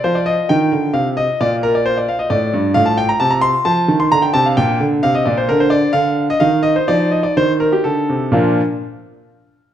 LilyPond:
<<
  \new Staff \with { instrumentName = "Grand piano" } { \time 3/4 \key bes \major \tempo 4 = 131 << { c''16 d''16 ees''8 g''4 f''8 ees''8 | d''8 bes'16 d''16 c''16 d''16 f''16 ees''16 d''4 | f''16 a''16 g''16 bes''16 a''16 bes''16 c'''8 a''8. c'''16 | bes''16 g''16 a''16 f''16 g''4 f''16 ees''16 d''16 c''16 |
bes'16 c''16 d''8 f''8. ees''16 f''8 ees''16 c''16 | d''8 ees''16 d''16 c''8 bes'16 g'16 a'4 | <bes, f d' f' bes'>8 r2 r8 | } \\ { f'2. | f'2. | f'2. | d'2. |
d'2 r4 | ees'2. | r2. | } >> }
  \new Staff \with { instrumentName = "Grand piano" } { \clef bass \time 3/4 \key bes \major f4 ees8 d8 c4 | bes,2 a,8 g,8 | a,4 c4 f8 ees8 | d8 c8 bes,8 d8 c8 bes,8 |
d4 d4 ees4 | f4 ees4 d8 c8 | r2. | }
>>